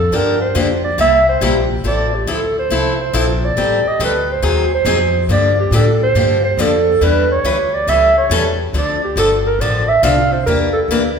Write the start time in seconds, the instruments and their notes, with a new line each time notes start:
Already playing: upright bass F2, clarinet A4
0.11 upright bass G2, steel-string acoustic guitar D3 F3 A#3 D4 G4, clarinet A#4
0.41 clarinet C5
0.55 upright bass F2, steel-string acoustic guitar D3 F3 A#3 D4 G4
0.84 clarinet D5
0.98 upright bass C2, steel-string acoustic guitar C3 G3 A#3 E4 G4, clarinet E5
1.29 clarinet C5
1.41 upright bass A#1, steel-string acoustic guitar C3 G3 A#3 E4 G4
1.83 upright bass A1, steel-string acoustic guitar F3 C4 E4 A4, clarinet D5
2.15 clarinet G4
2.27 upright bass D2, steel-string acoustic guitar F3 C4 E4 A4, clarinet A4
2.59 clarinet C5
2.70 upright bass C2, steel-string acoustic guitar F3 C4 E4 A4
3.01 clarinet C5
3.13 upright bass A#1, steel-string acoustic guitar F3 C4 E4 A4
3.45 clarinet D5
3.56 upright bass A1, steel-string acoustic guitar D#3 G3 C4 G4 A4
3.84 muted upright bass stroke
3.88 clarinet D#5
3.99 upright bass D2, steel-string acoustic guitar D#3 G3 C4 G4 A4
4.04 clarinet B4
4.32 clarinet C5
4.42 upright bass D#2, steel-string acoustic guitar D#3 F#3 C4 D#4 G#4
4.74 clarinet C5
4.85 upright bass F2, steel-string acoustic guitar D#3 F#3 C4 D#4 G#4
5.28 upright bass G2, steel-string acoustic guitar D3 F3 A#3 D4 G4, clarinet D5
5.60 clarinet G4
5.71 upright bass A2, steel-string acoustic guitar D3 F3 A#3 D4 G4, clarinet A4
6.03 clarinet C5
6.15 upright bass G2, steel-string acoustic guitar D3 F3 A#3 D4 G4
6.44 clarinet C5
6.57 upright bass F2, steel-string acoustic guitar D3 F3 A#3 D4 G4, clarinet A4
7.01 upright bass E2, steel-string acoustic guitar E3 G3 D4 E4 B4, clarinet B4
7.31 clarinet C#5
7.44 upright bass D2, steel-string acoustic guitar E3 G3 D4 E4 B4
7.74 clarinet D5
7.87 upright bass C#2, steel-string acoustic guitar E3 G3 C#4 E4 A4, clarinet E5
8.18 clarinet C#5
8.30 upright bass E2, steel-string acoustic guitar E3 G3 C#4 E4 A4
8.73 upright bass D2, steel-string acoustic guitar D3 F3 C4 D4 A4
8.78 clarinet D5
9.04 clarinet G4
9.16 upright bass G1, steel-string acoustic guitar D3 F3 C4 D4 A4, clarinet A4
9.46 clarinet A#4
9.59 upright bass A1, steel-string acoustic guitar D3 F3 C4 D4 A4, clarinet D5
9.88 clarinet E5
10.03 upright bass C2, steel-string acoustic guitar D3 F3 C4 D4 A4, clarinet F5
10.32 clarinet C5
10.46 upright bass E2, steel-string acoustic guitar E3 A#3 D4 G4, clarinet A#4
10.73 clarinet A4
10.88 upright bass D2, steel-string acoustic guitar E3 A#3 D4 G4, clarinet A#4